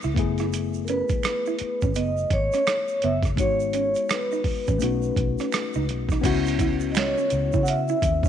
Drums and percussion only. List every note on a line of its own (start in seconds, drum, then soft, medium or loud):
0.02 shaker soft
0.16 kick medium
0.16 closed hi-hat medium
0.38 cross-stick soft
0.38 closed hi-hat soft
0.38 shaker soft
0.53 closed hi-hat medium
0.53 shaker medium
0.74 shaker soft
0.87 closed hi-hat medium
0.87 shaker soft
1.09 kick medium
1.09 closed hi-hat soft
1.09 shaker soft
1.23 finger snap medium
1.23 cross-stick loud
1.23 closed hi-hat medium
1.23 shaker medium
1.46 shaker soft
1.59 closed hi-hat medium
1.81 kick medium
1.81 shaker soft
1.95 closed hi-hat medium
1.95 shaker medium
2.17 shaker soft
2.30 kick medium
2.30 closed hi-hat medium
2.52 cross-stick soft
2.52 closed hi-hat soft
2.52 shaker soft
2.67 finger snap medium
2.67 cross-stick loud
2.67 closed hi-hat medium
2.67 shaker medium
2.88 shaker soft
3.02 closed hi-hat medium
3.23 kick medium
3.23 cross-stick soft
3.23 closed hi-hat soft
3.23 shaker soft
3.37 kick medium
3.37 closed hi-hat medium
3.37 shaker medium
3.60 shaker soft
3.73 closed hi-hat soft
3.73 shaker soft
3.95 closed hi-hat soft
3.95 shaker soft
4.09 finger snap medium
4.09 cross-stick loud
4.09 closed hi-hat medium
4.09 shaker medium
4.32 shaker soft
4.44 kick medium
4.44 open hi-hat soft
4.67 kick medium
4.67 closed hi-hat soft
4.67 shaker soft
4.80 closed hi-hat medium
4.80 shaker medium
5.02 shaker soft
5.16 kick medium
5.16 closed hi-hat medium
5.38 cross-stick soft
5.38 closed hi-hat soft
5.38 shaker soft
5.52 finger snap medium
5.52 cross-stick loud
5.52 closed hi-hat medium
5.52 shaker medium
5.73 shaker soft
5.89 closed hi-hat medium
6.09 kick medium
6.09 cross-stick soft
6.09 shaker soft
6.23 kick medium
6.23 closed hi-hat medium
6.23 crash medium
6.23 shaker medium
6.46 closed hi-hat soft
6.46 shaker soft
6.59 kick medium
6.59 closed hi-hat medium
6.59 shaker soft
6.80 shaker soft
6.95 finger snap medium
6.95 snare loud
6.95 closed hi-hat medium
6.95 shaker medium
6.98 finger snap medium
7.18 shaker soft
7.30 closed hi-hat medium
7.30 shaker soft
7.53 kick medium
7.53 shaker soft
7.66 closed hi-hat medium
7.66 shaker medium
7.88 shaker soft
8.02 kick medium
8.02 closed hi-hat medium
8.02 shaker medium
8.23 kick medium
8.23 shaker medium